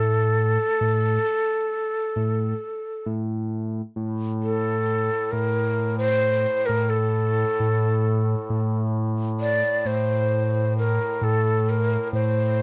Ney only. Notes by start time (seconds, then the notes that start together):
Already playing: A4
4.43 A4
5.32 A#4
5.98 C5
6.66 A#4
6.90 A4
9.40 D5
9.87 C5
10.78 A#4
11.24 A4
11.70 A#4
12.13 C5